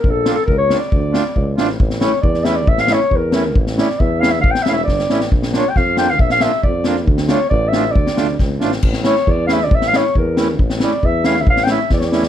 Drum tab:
CC |--------|--------|--------|--------|
SD |--o---oo|--o---oo|-oo--oo-|-oo---o-|
BD |o---o---|o---o---|o---o---|o---o---|

CC |--------|--------|--------|--------|
SD |-ooo--o-|-oo-oooo|-oo-o-oo|-ooo--oo|
BD |o---o---|o---o---|o---o---|o---o---|

CC |--------|--------|x-------|--------|
SD |-oo---o-|-oo-o-oo|-ooo--oo|-oo---o-|
BD |o---o---|o---o---|o---o---|o---o---|

CC |--------|--------|
SD |-oo---oo|-oo-oooo|
BD |o---o---|o---o---|